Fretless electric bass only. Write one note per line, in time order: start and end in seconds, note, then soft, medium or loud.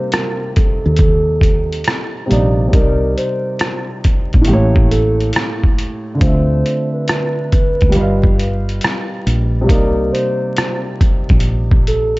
0.86 1.83 D#2 medium
2.31 2.71 A#1 medium
2.74 3.14 C2 medium
4.35 4.47 A#1 medium
4.48 5.31 A1 loud
6.22 6.62 D2 loud
7.83 7.95 D2 medium
7.95 8.78 G1 loud
9.26 9.70 A#1 medium
9.70 10.10 C2 loud
11.30 12.19 A#1 medium